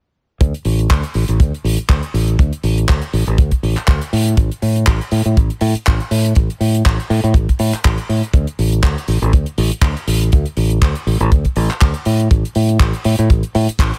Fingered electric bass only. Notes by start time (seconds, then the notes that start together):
0.41 D2
0.65 A1
0.90 D2
1.15 A1
1.29 A1
1.40 D2
1.64 A1
1.78 muted fingered electric bass stroke
1.89 D2
2.14 A1
2.39 D2
2.63 A1
2.89 D2
3.13 A1
3.27 A1
3.38 D2
3.63 A1
3.77 muted fingered electric bass stroke
3.88 D2
4.13 A2
4.37 A1
4.62 A2
4.87 A1
5.12 A2
5.26 A2
5.37 A1
5.61 A2
5.75 muted fingered electric bass stroke
5.88 A1
6.11 A2
6.36 A1
6.60 A2
6.86 A1
7.10 A2
7.24 A2
7.34 A1
7.60 A2
7.73 muted fingered electric bass stroke
7.85 A1
8.09 A2
8.34 D2
8.59 A1
9.08 A1
9.22 A1
9.33 D2
9.58 A1
9.71 muted fingered electric bass stroke
9.82 D2
10.07 A1
10.33 D2
10.57 A1
10.82 D2
11.07 A1
11.20 A1
11.56 A1
11.81 D2
12.06 A2
12.31 A1
12.56 A2
12.80 A1
13.05 A2
13.19 A2
13.30 A1
13.55 A2
13.69 muted fingered electric bass stroke
13.79 A1